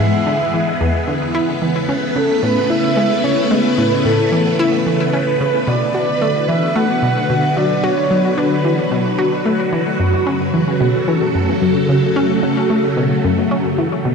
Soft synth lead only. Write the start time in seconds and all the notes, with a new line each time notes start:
0.00 E5
2.16 A4
2.43 B4
2.70 E5
3.24 C#5
3.51 B4
4.05 A4
5.13 B4
5.68 D5
6.48 E5
6.75 F#5
7.57 D5
7.84 C#5
8.37 B4